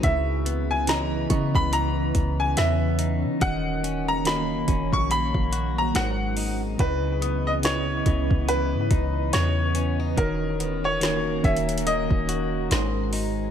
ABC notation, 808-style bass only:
X:1
M:4/4
L:1/16
Q:"Swing 16ths" 1/4=71
K:C#dor
V:1 name="808-style bass" clef=bass
C,,6 C, C,,3 C,,2 E,,3 C, | D,,,6 D,,, A,,,2 A,,,3 G,,,4 | C,,6 C,, C,,2 G,, C,,2 E,,4 | D,,,6 D,,,3 D,,,3 G,,,4 |]